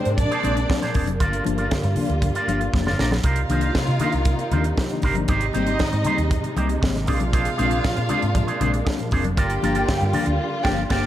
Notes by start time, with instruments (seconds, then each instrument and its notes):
Already playing: string section C3 G#3 A#3 D4, violin section C4 C5
0.05 fingered electric bass G#2, tine electric piano D4, muted clean electric guitar stroke, closed hi-hat
0.17 tine electric piano A#2 F3, violin section D4 D5, muted clean electric guitar stroke, kick, closed hi-hat, muted conga
0.31 clean electric guitar D4 G#4 C5, closed hi-hat
0.43 fingered electric bass A#1, tine electric piano G#3 C4 D4, clean electric guitar D4 G#4 C5, closed hi-hat, muted conga
0.56 tine electric piano C4 D4, closed hi-hat
0.69 tine electric piano C4 D4, muted clean electric guitar stroke, kick, snare, high conga
0.82 tine electric piano A#2 F3, clean electric guitar D4 G#4 C5, snare, closed hi-hat
0.94 fingered electric bass F1, tine electric piano C4 D4, clean electric guitar D4 G#4 C5, kick, open hi-hat
1.07 muted clean electric guitar stroke, closed hi-hat, high conga
1.20 fingered electric bass G1, tine electric piano G2 D3, string section D3 G3 F4, clean electric guitar F4 A#4 D5, kick, closed hi-hat, muted conga
1.33 closed hi-hat
1.45 fingered electric bass G1, tine electric piano F3 A#3 D4, muted clean electric guitar stroke, closed hi-hat, muted conga
1.58 tine electric piano A#3 D4, clean electric guitar F4 A#4 D5, closed hi-hat
1.71 tine electric piano G2 D3, kick, snare, high conga
1.83 fingered electric bass G2, muted clean electric guitar stroke, closed hi-hat
1.96 tine electric piano F3 A#3 D4, open hi-hat, low conga
2.09 fingered electric bass D2, tine electric piano A#3 D4, muted clean electric guitar stroke, closed hi-hat
2.22 tine electric piano G2 D3, muted clean electric guitar stroke, kick, closed hi-hat, muted conga
2.35 clean electric guitar F4 A#4 D5, closed hi-hat
2.47 fingered electric bass G1, tine electric piano F3 A#3 D4, clean electric guitar F4 A#4 D5, closed hi-hat, muted conga
2.61 tine electric piano A#3 D4, muted clean electric guitar stroke, closed hi-hat
2.73 fingered electric bass F1, tine electric piano A#3 D4, muted clean electric guitar stroke, kick, snare, high conga
2.86 tine electric piano G2 D3, clean electric guitar F4 A#4 D5, snare
2.99 fingered electric bass A#1, tine electric piano A#3 D4, clean electric guitar F4 A#4 D5, snare
3.11 muted clean electric guitar stroke, snare, high conga
3.23 fingered electric bass C2, string section C3 G3 A#3 D#4, tine electric piano C3, clean electric guitar D#4 A#4 C5, violin section F4 F5, kick, closed hi-hat, muted conga
3.36 closed hi-hat
3.49 fingered electric bass C2, tine electric piano D#3 A#3 D4, clean electric guitar D#4 A#4 C5, closed hi-hat, muted conga
3.61 tine electric piano A#3 D4, clean electric guitar D#4 A#4 C5, closed hi-hat
3.75 tine electric piano C3, kick, snare, high conga
3.87 fingered electric bass C3, muted clean electric guitar stroke, closed hi-hat
4.00 tine electric piano D#3 A#3 D4, clean electric guitar D#4 A#4 C5, closed hi-hat, low conga
4.12 fingered electric bass C2, tine electric piano A#3 D4, muted clean electric guitar stroke, closed hi-hat
4.25 tine electric piano C3, kick, closed hi-hat, muted conga
4.39 muted clean electric guitar stroke, closed hi-hat
4.52 fingered electric bass D#2, tine electric piano D#3 A#3 D4, clean electric guitar D#4 A#4 C5, closed hi-hat, muted conga, low conga
4.64 tine electric piano A#3 D4, muted clean electric guitar stroke, closed hi-hat
4.77 muted clean electric guitar stroke, kick, snare, high conga
4.89 tine electric piano D#3 A#3 D4, muted clean electric guitar stroke, closed hi-hat
5.02 fingered electric bass G1, tine electric piano C3, clean electric guitar D#4 A#4 C5, kick, open hi-hat
5.15 tine electric piano D#3 A#3 D4, muted clean electric guitar stroke, closed hi-hat, high conga
5.28 fingered electric bass G#1, tine electric piano G#2 D#3, string section G#3 D#4, violin section D#4 D#5, clean electric guitar D#4 G4 C5, kick, closed hi-hat, muted conga
5.41 closed hi-hat
5.53 fingered electric bass G#1, tine electric piano G3 A#3 C4, clean electric guitar D#4 G4 C5, closed hi-hat, muted conga
5.67 tine electric piano A#3 C4, clean electric guitar D#4 G4 C5, closed hi-hat
5.79 tine electric piano G#2 D#3, muted fingered electric bass stroke, kick, snare, high conga
5.92 fingered electric bass G#2, muted clean electric guitar stroke, closed hi-hat
6.04 tine electric piano G3 A#3, clean electric guitar D#4 G4 C5, closed hi-hat, low conga
6.08 tine electric piano C4
6.18 fingered electric bass D#2, muted clean electric guitar stroke, closed hi-hat
6.31 tine electric piano G#2 D#3, kick, closed hi-hat, muted conga
6.43 muted clean electric guitar stroke, closed hi-hat
6.56 fingered electric bass C2, tine electric piano G3 A#3 C4, clean electric guitar D#4 G4 C5, closed hi-hat, muted conga
6.69 tine electric piano A#3 C4, muted clean electric guitar stroke, closed hi-hat
6.81 fingered electric bass G#1, tine electric piano A#3 C4, muted clean electric guitar stroke, kick, snare, high conga
6.95 tine electric piano G#2 D#3, muted clean electric guitar stroke, snare, closed hi-hat
7.07 fingered electric bass A#1, string section A#3 D4, tine electric piano C4 D4, clean electric guitar D4 G#4 C5, violin section F4 F5, kick, open hi-hat
7.20 muted clean electric guitar stroke, closed hi-hat, high conga
7.33 tine electric piano A#2 F3, clean electric guitar D4 G#4 C5, kick, closed hi-hat, muted conga
7.45 closed hi-hat
7.58 fingered electric bass A#1, tine electric piano G#3 C4 D4, clean electric guitar D4 G#4 C5, closed hi-hat, muted conga
7.70 tine electric piano C4 D4, clean electric guitar D4 G#4 C5, closed hi-hat
7.84 tine electric piano A#2 F3, kick, snare, high conga
7.96 fingered electric bass A#2, muted clean electric guitar stroke, closed hi-hat
8.09 tine electric piano G#3 C4 D4, clean electric guitar D4 G#4 C5, closed hi-hat, low conga
8.22 fingered electric bass G#2, tine electric piano C4 D4, muted clean electric guitar stroke, closed hi-hat
8.34 tine electric piano A#2 F3, muted clean electric guitar stroke, kick, closed hi-hat, muted conga
8.47 clean electric guitar D4 G#4 C5, closed hi-hat
8.60 fingered electric bass A#1, tine electric piano G#3 C4 D4, clean electric guitar D4 G#4 C5, closed hi-hat, muted conga, low conga
8.73 tine electric piano C4 D4, muted clean electric guitar stroke, closed hi-hat
8.85 tine electric piano C4 D4, muted clean electric guitar stroke, kick, snare, high conga
8.99 tine electric piano A#2 F3, muted clean electric guitar stroke, closed hi-hat
9.11 fingered electric bass F1, tine electric piano C4 D4, clean electric guitar D4 G#4 C5, kick, open hi-hat
9.24 muted clean electric guitar stroke, closed hi-hat, high conga
9.37 fingered electric bass G1, tine electric piano G2 D3, string section D3 G3 F4, clean electric guitar F4 A#4 D5, violin section G4 G5, kick, closed hi-hat, muted conga
9.50 closed hi-hat
9.62 fingered electric bass G1, tine electric piano F3 A#3 D4, clean electric guitar F4 A#4 D5, closed hi-hat, muted conga
9.75 tine electric piano A#3 D4, clean electric guitar F4 A#4 D5, closed hi-hat
9.88 tine electric piano G2 D3, muted fingered electric bass stroke, kick, snare, high conga
10.00 fingered electric bass G2, muted clean electric guitar stroke, closed hi-hat
10.13 tine electric piano F3 A#3 D4, clean electric guitar F4 A#4 D5, open hi-hat, low conga
10.26 fingered electric bass D2, tine electric piano A#3 D4, muted clean electric guitar stroke, closed hi-hat
10.64 fingered electric bass G1, tine electric piano F3 A#3 D4, clean electric guitar F4 A#4 D5, violin section G4 G5, kick, snare, crash
10.90 fingered electric bass G1, tine electric piano A#3 D4, clean electric guitar F4 A#4 D5, violin section G4 G5, kick, snare, crash